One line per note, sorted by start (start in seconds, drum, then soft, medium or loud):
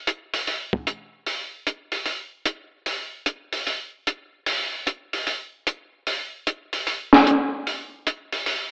0.07 closed hi-hat soft
0.34 open hi-hat soft
0.47 open hi-hat soft
0.73 kick soft
0.87 closed hi-hat medium
1.26 open hi-hat soft
1.67 closed hi-hat soft
1.92 open hi-hat soft
2.06 open hi-hat soft
2.46 closed hi-hat medium
2.86 open hi-hat soft
3.26 closed hi-hat soft
3.53 open hi-hat soft
3.67 open hi-hat soft
4.07 closed hi-hat soft
4.46 open hi-hat soft
4.87 closed hi-hat soft
5.13 open hi-hat soft
5.27 open hi-hat soft
5.67 closed hi-hat medium
6.07 open hi-hat soft
6.47 closed hi-hat medium
6.73 open hi-hat soft
6.87 open hi-hat soft
7.13 snare medium
7.27 closed hi-hat medium
7.67 open hi-hat soft
8.07 closed hi-hat medium
8.32 open hi-hat soft
8.46 open hi-hat soft